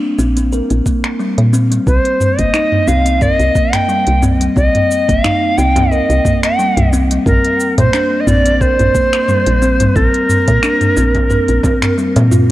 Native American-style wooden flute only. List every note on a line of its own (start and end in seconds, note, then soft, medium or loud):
1.86 2.40 C5 medium
2.39 2.89 D#5 medium
2.88 3.24 F5 loud
3.22 3.33 D5 loud
3.33 3.75 D#5 loud
3.74 4.23 G5 medium
4.56 5.10 D#5 medium
5.09 5.59 F5 medium
5.58 5.93 G5 loud
5.91 6.43 D#5 medium
6.44 6.89 G5 medium
7.27 7.75 A#4 medium
7.79 8.22 C5 medium
8.20 8.29 D#5 medium
8.27 8.63 D5 loud
8.61 9.97 C5 loud
9.96 11.98 A#4 loud